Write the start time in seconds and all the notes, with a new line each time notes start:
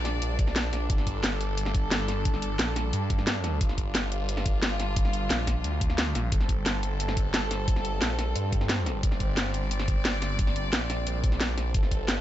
Already playing: A#1 G3 D4 D5
0.05 snare, closed hi-hat
0.22 A#1, closed hi-hat
0.39 kick, closed hi-hat
0.47 snare
0.56 snare, closed hi-hat
0.73 A#1, snare, closed hi-hat
0.90 G1 A4, kick, closed hi-hat
0.98 snare
1.07 kick, closed hi-hat
1.24 snare, closed hi-hat
1.41 closed hi-hat
1.58 closed hi-hat
1.66 snare
1.75 kick, closed hi-hat
1.91 snare, closed hi-hat
2.08 snare, closed hi-hat
2.25 kick, closed hi-hat
2.34 snare
2.42 closed hi-hat
2.59 A#1, snare, closed hi-hat
2.76 snare, closed hi-hat
2.93 G2, closed hi-hat
3.10 kick, closed hi-hat
3.18 snare
3.27 snare, closed hi-hat
3.44 snare, closed hi-hat
3.61 G1 F4, kick, closed hi-hat
3.69 snare
3.78 kick, closed hi-hat
3.95 snare, closed hi-hat
4.12 closed hi-hat
4.29 closed hi-hat
4.37 snare
4.46 G1, kick, closed hi-hat
4.63 snare, closed hi-hat
4.80 snare, closed hi-hat
4.96 kick, closed hi-hat
5.05 snare
5.13 closed hi-hat
5.30 A#1, snare, closed hi-hat
5.47 kick, snare, closed hi-hat
5.64 D2, closed hi-hat
5.81 kick, closed hi-hat
5.90 snare
5.98 snare, closed hi-hat
6.15 A#1, snare, closed hi-hat
6.32 G1 C4 A4, kick, closed hi-hat
6.41 snare
6.49 kick, closed hi-hat
6.66 snare, closed hi-hat
6.83 closed hi-hat
7.00 closed hi-hat
7.08 snare
7.17 G1, kick, closed hi-hat
7.34 snare, closed hi-hat
7.51 snare, closed hi-hat
7.68 kick, closed hi-hat
7.76 snare
7.85 closed hi-hat
8.02 A#1, snare, closed hi-hat
8.19 snare, closed hi-hat
8.36 G2, closed hi-hat
8.52 kick, closed hi-hat
8.61 snare
8.69 snare, closed hi-hat
8.86 snare, closed hi-hat
9.03 G1 D5, kick, closed hi-hat
9.12 snare
9.20 kick, closed hi-hat
9.37 snare, closed hi-hat
9.54 closed hi-hat
9.71 closed hi-hat
9.80 snare
9.88 G1, kick, closed hi-hat
10.05 snare, closed hi-hat
10.22 snare, closed hi-hat
10.39 kick, closed hi-hat
10.47 snare
10.56 closed hi-hat
10.73 A#1, snare, closed hi-hat
10.90 snare, closed hi-hat
11.07 A#1, closed hi-hat
11.24 kick, closed hi-hat
11.32 snare
11.41 snare, closed hi-hat
11.58 A#1, snare, closed hi-hat
11.74 A4, kick, closed hi-hat
11.83 snare
11.91 kick, closed hi-hat
12.08 snare, closed hi-hat